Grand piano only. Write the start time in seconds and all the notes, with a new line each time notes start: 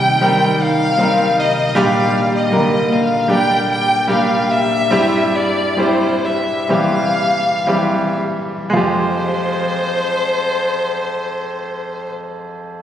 Already playing: G2 G3 C4 D#4 G4
0.21 G3 C4 D#4 A#4
0.98 G3 C4 D#4 A#4
1.75 A#2 G3 A#3 D4 G4
2.51 D3 G3 A#3 A#4
3.28 G3 A#3 D4 G4
4.07 G3 A#3 D4 G4
4.91 G2 G3 C4 E4 G4
5.77 G3 C4 E4 G4
6.69 E3 G3 C4 G4
7.67 E3 G3 C4 G4
8.70 F2 G#3 F4
8.77 G4